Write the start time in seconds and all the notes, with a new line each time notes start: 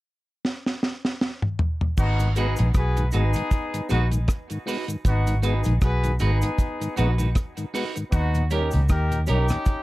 0.45 snare
0.66 snare
0.83 snare
1.05 snare
1.21 snare
1.42 mid tom
1.59 floor tom
1.81 floor tom
1.97 G#1 B3 D#4 F#4, kick, crash, cabasa
2.19 G#2 D#3, closed hi-hat, cabasa
2.36 G#3 B3 D#4 F#4 G#4 B4, closed hi-hat, cabasa
2.56 A#1 G#2 D#3, closed hi-hat, cabasa
2.74 B1 F#4 G#4 B4, kick, cross-stick, closed hi-hat, cabasa
2.97 G#2 D#3, closed hi-hat, cabasa
3.11 G#1 G#3 B3 D#4 F#4 G#4 B4, closed hi-hat, cabasa
3.33 G#2 D#3, muted clean electric guitar stroke, closed hi-hat, cabasa
3.51 kick, closed hi-hat, cabasa
3.74 G#2 D#3, closed hi-hat, cabasa
3.89 A#1 G#3 B3 D#4 F#4 B4, closed hi-hat, cabasa
4.11 G#2 D#3, closed hi-hat, cabasa
4.28 kick, cross-stick, closed hi-hat, cabasa
4.50 G#2 D#3, closed hi-hat, cabasa
4.66 G#3 B3 D#4 F#4 B4, open hi-hat, cabasa
4.88 G#2 D#3, closed hi-hat, cabasa
5.05 G#1 B3 D#4 F#4, kick, closed hi-hat, cabasa
5.27 G#2 D#3, closed hi-hat, cabasa
5.42 G#3 B3 D#4 F#4 G#4 B4, closed hi-hat, cabasa
5.64 A#1 G#2 D#3, closed hi-hat, cabasa
5.81 B1 F#4 G#4 B4, kick, cross-stick, closed hi-hat, cabasa
6.04 G#2 D#3, closed hi-hat, cabasa
6.19 G#1 G#3 B3 D#4 F#4 G#4 B4, closed hi-hat, cabasa
6.42 G#2 D#3, closed hi-hat, cabasa
6.59 kick, closed hi-hat, cabasa
6.81 G#2 D#3, closed hi-hat, cabasa
6.96 A#1 G#3 B3 D#4 F#4 B4, closed hi-hat, cabasa
7.18 G#2 D#3 D#4 F#4 B4, closed hi-hat, cabasa
7.35 kick, cross-stick, closed hi-hat, cabasa
7.57 G#2 D#3, closed hi-hat, cabasa
7.74 G#3 B3 D#4 F#4 B4, open hi-hat, cabasa
7.96 G#2 D#3, closed hi-hat, cabasa
8.11 D#2 B3 D#4 F#4, kick, closed hi-hat, cabasa
8.34 D#2 A#2, closed hi-hat, cabasa
8.50 G3 C#4 D#4 G4 A#4, closed hi-hat, cabasa
8.71 C#2 D#2 A#2, closed hi-hat, cabasa
8.88 D#2 D#4 G4 A#4, kick, cross-stick, closed hi-hat, cabasa
9.11 D#2 A#2, closed hi-hat, cabasa
9.27 B1 G3 C#4 D#4 G4 A#4, closed hi-hat, cabasa
9.48 D#2 A#2, muted clean electric guitar stroke, cross-stick, closed hi-hat, cabasa
9.66 kick, closed hi-hat, cabasa